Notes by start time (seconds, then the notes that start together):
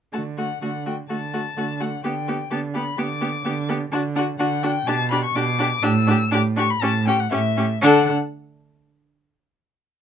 0.13 D3 A3 F#4 A5
0.38 A3 F#4 F#5
0.62 D3 A3 F#4 F#5
0.86 A3 F#4 G5
1.10 D3 A3 F#4 A5
1.33 A3 F#4
1.57 D3 A3 F#4
1.80 A3 F#4 F#5
2.04 D3 B3 G4 G5
2.28 B3 G4
2.51 D3 B3 G4 A5
2.74 B3 G4 B5
2.98 D3 B3 G4 D6
3.21 B3 G4
3.45 D3 B3 G4
3.69 B3 G4
3.92 D3 D4 F#4 A5
4.16 D4 F#4 F#5
4.39 D3 D4 F#4 F#5
4.62 D4 F#4 G5
4.87 B2 D4 G4 A5
5.11 D4 G4 B5
5.24 C#6
5.35 B2 D4 G4 D6
5.59 D4 G4
5.83 A2 D4 G4 E6
6.07 D4 G4
6.31 A2 D4 G4 D6
6.56 D4 G4 C#6
6.70 B5
6.81 A2 C#4 G4 A5
7.07 C#4 G4 G5
7.20 F#5
7.31 A2 C#4 G4 E5
7.57 C#4 G4
7.82 D3 D4 A4 F#5